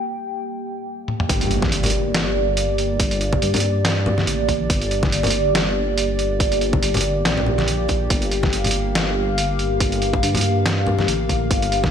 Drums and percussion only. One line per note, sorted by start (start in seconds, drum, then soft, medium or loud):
1.08 high tom medium
1.20 mid tom medium
1.29 kick loud
1.29 closed hi-hat medium
1.41 closed hi-hat medium
1.51 closed hi-hat medium
1.62 kick loud
1.62 snare soft
1.62 high conga medium
1.72 closed hi-hat medium
1.83 closed hi-hat medium
1.83 low conga loud
1.86 closed hi-hat medium
1.90 closed hi-hat medium
2.15 snare loud
2.15 closed hi-hat medium
2.57 closed hi-hat medium
2.78 closed hi-hat medium
3.00 kick loud
3.00 closed hi-hat medium
3.11 closed hi-hat medium
3.21 closed hi-hat medium
3.33 kick loud
3.33 high conga medium
3.42 closed hi-hat medium
3.54 closed hi-hat medium
3.54 low conga medium
3.56 closed hi-hat medium
3.60 closed hi-hat medium
3.85 snare loud
3.85 closed hi-hat medium
4.06 low conga loud
4.18 snare soft
4.18 high conga medium
4.27 closed hi-hat medium
4.48 kick medium
4.48 closed hi-hat medium
4.48 high conga medium
4.70 kick loud
4.70 closed hi-hat medium
4.82 closed hi-hat medium
4.91 closed hi-hat medium
5.03 kick loud
5.03 snare soft
5.03 high conga loud
5.12 closed hi-hat medium
5.23 closed hi-hat medium
5.23 low conga medium
5.27 closed hi-hat medium
5.30 closed hi-hat medium
5.55 snare loud
5.55 closed hi-hat medium
5.98 closed hi-hat medium
6.19 closed hi-hat medium
6.40 kick loud
6.40 closed hi-hat medium
6.52 closed hi-hat medium
6.61 closed hi-hat medium
6.73 kick loud
6.73 high conga medium
6.83 closed hi-hat medium
6.94 closed hi-hat soft
6.94 low conga medium
6.97 closed hi-hat medium
7.01 closed hi-hat medium
7.25 snare loud
7.25 closed hi-hat medium
7.37 low conga medium
7.46 low conga medium
7.58 snare soft
7.58 high conga medium
7.68 closed hi-hat medium
7.88 kick medium
7.88 closed hi-hat medium
7.88 high conga medium
8.10 kick loud
8.10 closed hi-hat medium
8.22 closed hi-hat soft
8.31 closed hi-hat medium
8.43 kick loud
8.43 snare soft
8.43 high conga medium
8.53 closed hi-hat medium
8.64 closed hi-hat medium
8.64 low conga medium
8.67 closed hi-hat medium
8.71 closed hi-hat medium
8.95 snare loud
8.95 closed hi-hat medium
9.38 closed hi-hat medium
9.59 closed hi-hat soft
9.80 kick loud
9.80 closed hi-hat medium
9.92 closed hi-hat soft
10.02 closed hi-hat medium
10.13 kick loud
10.13 high conga medium
10.23 closed hi-hat medium
10.35 closed hi-hat soft
10.35 low conga medium
10.37 closed hi-hat medium
10.41 closed hi-hat medium
10.66 snare loud
10.66 closed hi-hat medium
10.86 low conga medium
10.99 snare soft
10.99 high conga medium
11.08 closed hi-hat medium
11.29 kick medium
11.29 closed hi-hat soft
11.29 high conga medium
11.51 kick loud
11.51 closed hi-hat medium
11.62 closed hi-hat medium
11.72 closed hi-hat medium
11.84 kick loud
11.84 snare soft
11.84 high conga medium